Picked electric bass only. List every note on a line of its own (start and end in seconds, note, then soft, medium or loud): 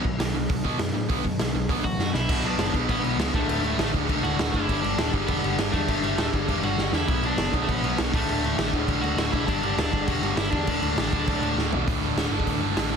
0.04 0.14 B1 medium
0.20 0.30 B1 medium
0.34 0.44 B1 medium
0.50 0.60 B1 loud
0.65 0.75 B2 loud
0.79 0.89 F#2 loud
0.94 1.05 A2 medium
1.10 1.20 B1 medium
1.24 1.35 F#2 medium
1.39 1.49 B1 medium
1.53 1.64 B1 medium
1.69 1.79 B1 medium
1.84 1.94 A1 medium
1.99 2.09 F#2 medium
2.14 2.24 B1 medium
2.29 2.39 B1 loud
2.43 2.53 B1 loud
2.58 2.68 F#1 medium
2.74 2.84 B1 medium
2.89 2.99 A1 loud
3.02 3.13 B1 loud
3.17 3.27 C#2 loud
3.34 3.44 D1 medium
3.48 3.58 D1 loud
3.63 3.73 D1 loud
3.78 3.88 A1 loud
3.94 4.04 D1 medium
4.09 4.19 B1 loud
4.23 4.33 D1 loud
4.39 4.48 D1 loud
4.54 4.63 F#1 medium
4.69 4.78 G1 medium
4.84 4.93 G1 loud
4.98 5.08 D1 loud
5.14 5.23 G1 loud
5.28 5.38 E1 loud
5.44 5.53 G1 loud
5.58 5.68 G1 loud
5.74 5.83 E2 medium
5.88 5.98 G1 loud
6.02 6.12 G1 medium
6.17 6.27 D1 loud
6.33 6.43 G1 medium
6.48 6.58 E1 loud
6.62 6.72 G1 medium
6.77 6.87 G1 loud
6.93 7.03 E2 medium
7.08 7.18 B1 medium
7.23 7.33 B1 medium
7.37 7.47 F#1 loud
7.53 7.63 B1 medium
7.68 7.78 A1 loud
7.83 7.93 B1 loud
7.99 8.08 B1 loud
8.13 8.23 D1 loud
8.27 8.37 D1 loud
8.42 8.52 D1 loud
8.57 8.67 A1 loud
8.73 8.83 D1 medium
8.88 8.98 B1 loud
9.02 9.12 D1 loud
9.17 9.27 D1 loud
9.33 9.43 B1 medium
9.48 9.58 G1 loud
9.62 9.72 G1 medium
9.77 9.87 D1 loud
9.93 10.03 G1 medium
10.08 10.18 E1 loud
10.22 10.32 G1 loud
10.37 10.47 G1 medium
10.53 10.62 E2 medium
10.67 10.77 D1 loud
10.82 10.92 D1 medium
10.97 11.07 A1 loud
11.13 11.22 D1 medium
11.28 11.37 B1 loud
11.41 11.51 D1 loud
11.56 11.66 D1 loud
11.71 11.81 B1 medium
11.88 12.01 D1 medium
12.02 12.16 D1 medium
12.17 12.30 D1 medium
12.31 12.45 G1 medium
12.47 12.60 D1 loud
12.62 12.75 G1 medium
12.75 12.96 A1 loud